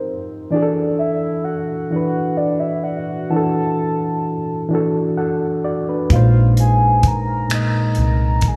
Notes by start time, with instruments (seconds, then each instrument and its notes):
Already playing: reed electric piano F3 D#4 G4 A#4, soft synth lead C5
0.51 reed electric piano E3 D4 F#4, soft synth lead D5
0.56 reed electric piano G#4
0.62 reed electric piano A4
0.98 soft synth lead E5
1.44 soft synth lead F#5
1.90 reed electric piano E3 D4 F#4, soft synth lead F#5
1.96 reed electric piano B4
2.37 soft synth lead D5
2.60 soft synth lead E5
2.84 soft synth lead F#5
3.30 reed electric piano E3 D4 F#4, soft synth lead A5
3.36 reed electric piano A4
4.69 reed electric piano E3 D4
4.73 reed electric piano F#4 A4
5.17 reed electric piano A4 F#5
5.64 reed electric piano F#4 D5
5.89 reed electric piano D4 B4
6.09 fingered electric bass A#1, reed electric piano A#2 G#3 D#4, soft synth lead F5, kick, closed hi-hat
6.16 reed electric piano C5
6.57 soft synth lead G#5, closed hi-hat
7.03 kick, closed hi-hat
7.07 soft synth lead A#5
7.48 reed electric piano A#2 G#3 D#4, finger snap, closed hi-hat
7.54 reed electric piano D#5
7.95 fingered electric bass C2, closed hi-hat
8.01 soft synth lead A#5
8.41 fingered electric bass A1, kick, closed hi-hat
8.48 soft synth lead G#5